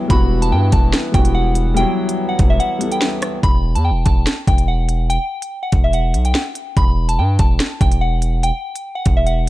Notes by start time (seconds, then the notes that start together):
Already playing: F#3 G3 B3 E4
0.08 E1 E3 G3 B3 E4 B5, kick, closed hi-hat
0.12 F#4
0.42 A5, closed hi-hat
0.52 G2 G5
0.72 E1 A5, kick, closed hi-hat
0.93 snare, closed hi-hat
1.12 E1 G3 B3 E4 G5, kick, closed hi-hat
1.16 F#4
1.25 closed hi-hat
1.35 F#5
1.55 closed hi-hat
1.74 G3 B3 E4 G5, closed hi-hat
1.79 F#3
2.09 closed hi-hat
2.29 F#5
2.39 E1, kick, closed hi-hat
2.50 E5
2.60 F#5, closed hi-hat
2.79 G3 B3 E4, closed hi-hat
2.83 A4
2.92 G5, closed hi-hat
3.02 snare
3.22 cross-stick, closed hi-hat
3.43 E1 B5, kick, closed hi-hat
3.75 E2 A5, closed hi-hat
3.85 G5
3.91 E1
4.05 E1 A5, kick, closed hi-hat
4.27 snare, closed hi-hat
4.47 E1 G5, kick, closed hi-hat
4.58 closed hi-hat
4.68 F#5
4.89 closed hi-hat
5.10 G5, closed hi-hat
5.42 closed hi-hat
5.63 F#5
5.72 E1, kick, closed hi-hat
5.84 E5
5.93 F#5, closed hi-hat
6.14 B1, closed hi-hat
6.25 G5, closed hi-hat
6.35 snare
6.55 closed hi-hat
6.77 E1 B5, kick, closed hi-hat
7.09 A5, closed hi-hat
7.18 G2 G5
7.39 E1 A5, kick, closed hi-hat
7.60 snare, closed hi-hat
7.81 E1 G5, kick, closed hi-hat
7.92 closed hi-hat
8.01 F#5
8.22 closed hi-hat
8.43 G5, closed hi-hat
8.76 closed hi-hat
8.95 F#5
9.06 E1, kick, closed hi-hat
9.17 E5
9.26 F#5, closed hi-hat